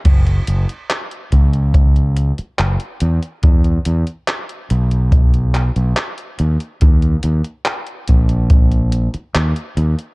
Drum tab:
CC |x---------------|----------------|----------------|
HH |xxxxxxxxxxxxxxxx|xxxxxxxxxxxxxxxx|xxxxxxxxxxxxxxxx|
CP |----x-------x---|----x-----x-x---|----x-------x---|
BD |o-----o-o-------|o-------o-------|o-----o-o-------|